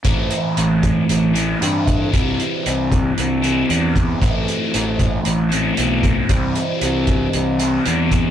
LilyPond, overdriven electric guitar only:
\new Staff \with { instrumentName = "Overdriven electric guitar" } { \clef bass \time 4/4 \key a \minor \tempo 4 = 115 <a, e a c' e'>2~ <a, e a c' e'>8 <a, e a c' e'>8 <a, e a c' e'>4 | <c e g c' e'>2~ <c e g c' e'>8 <c e g c' e'>8 <c e g c' e'>4 | <a, e a c' e'>2~ <a, e a c' e'>8 <a, e a c' e'>8 <a, e a c' e'>4 | <c e g c' e'>2~ <c e g c' e'>8 <c e g c' e'>8 <c e g c' e'>4 | }